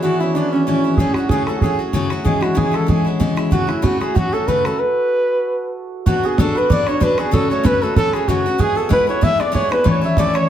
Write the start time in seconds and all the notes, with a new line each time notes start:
Already playing: D4 E4 G#4
0.02 A2 E3 B3 C#4 E4 F#4
0.20 B3 C#4 E4
0.35 E3 B3 C#4 D4 E4
0.51 C#4 E4
0.56 B3
0.64 A2 E3 B3 C#4
0.69 E4
0.84 B3 C#4 E4
0.97 F#2 C#3 F#3 A3 C#4 G#4, bodhran
1.01 F#4
1.06 bodhran
1.14 C#4 F#4, bodhran
1.18 F#3 A3
1.29 F#2 C#3 F#3 A3 C#4 G#4, bodhran
1.33 F#4
1.46 A3 C#4 F#4 A4, bodhran
1.50 F#3
1.57 F#4 G#4
1.61 F#3 A3 C#4 G#4, bodhran
1.65 F#4
1.79 F#3 A3 C#4 F#4
1.93 F#2 C#3 F#3 A3 C#4 F#4, bodhran
2.10 F#3 A3 C#4 F#4, bodhran
2.25 C#3 E3 G#3 C#4 E4 G#4, bodhran
2.34 bodhran
2.41 G#3 C#4 E4 F#4, bodhran
2.55 C#3 E3 G#3 C#4 E4 G#4, bodhran
2.71 G#3 C#4 E4 A4, bodhran
2.76 A4
2.86 E3 G#3 C#4 E4 G#4, bodhran
3.05 G#3 C#4 E4
3.20 C#3 E3 G#3 C#4 E4, bodhran
3.37 G#3 C#4 E4, bodhran
3.51 F#2 C#3 F#3 A3 C#4 F#4, bodhran
3.61 bodhran
3.67 F#3 A3 C#4 E4 F#4, bodhran
3.82 F#2 C#3 F#3 A3 C#4 F#4, bodhran
4.00 F#3 A3 C#4 F#4 G#4, bodhran
4.14 F#3 A3 C#4 F#4, bodhran
4.32 F#3 A3 C#4 F#4 A4
4.47 F#2 C#3 F#3 A3 C#4 F#4 B4, bodhran
4.64 F#3 A3 C#4 F#4 A4, bodhran
4.79 B4
6.06 B2 F#3 B3 D4 F#4, bodhran
6.23 B3 D4 F#4 G#4
6.38 B2 F#3 B3 D4 F#4 A4, bodhran
6.47 bodhran
6.55 B3 D4 F#4 B4
6.69 F#3 B3 D4 F#4 D5, bodhran
6.87 B3 D4 F#4 C#5, bodhran
7.00 B2 F#3 B3 D4 F#4 B4, bodhran
7.18 B3 D4 F#4 G#4, bodhran
7.31 F#2 C#3 F#3 A3 C#4 F#4 A4, bodhran
7.50 F#3 A3 C#4 F#4 C#5
7.63 F#2 C#3 F#3 A3 C#4 F#4 B4, bodhran
7.73 bodhran
7.82 F#3 A3 C#4 F#4 A4
7.96 F#3 A3 C#4 F#4 A4, bodhran
8.12 A3 C#4 F#4 G#4, bodhran
8.17 F#3
8.28 F#2 C#3 F#3 A3 C#4 F#4, bodhran
8.46 F#3 A3 C#4 F#4
8.58 G#3 B3 E4 G#4, bodhran
8.75 B3 E4 G#4 A4
8.89 G#3 B3 E4 G#4 B4, bodhran
9.00 bodhran
9.07 B3 E4 G#4 C#5
9.21 G#3 B3 E4 G#4 E5, bodhran
9.38 B3 E4 G#4 D5, bodhran
9.52 G#3 B3 E4 G#4 C#5, bodhran
9.56 C#5
9.69 B3 E4 G#4 B4, bodhran
9.73 B4
9.84 A2 E3 A3 C#4 A4 C#5, bodhran
10.01 A3 C#4 A4 E5
10.06 E5
10.17 A2 E3 A3 C#4 A4 D5, bodhran
10.26 bodhran
10.34 A3 C#4 A4 C#5, bodhran